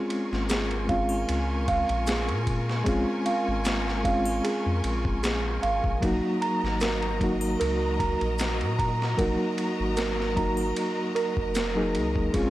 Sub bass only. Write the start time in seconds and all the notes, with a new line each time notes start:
0.32 G#1
1.29 C#2
1.89 A#1
2.29 A#2
2.87 A#1
3.48 G#1
4.66 F2
4.84 A#1
5.63 G#1
5.84 A#1
6.02 A#1
6.63 G#1
7.61 C#2
8.21 A#1
8.61 A#2
9.19 A#1
9.80 G#1
11.37 F1
11.95 C#2
12.34 A#1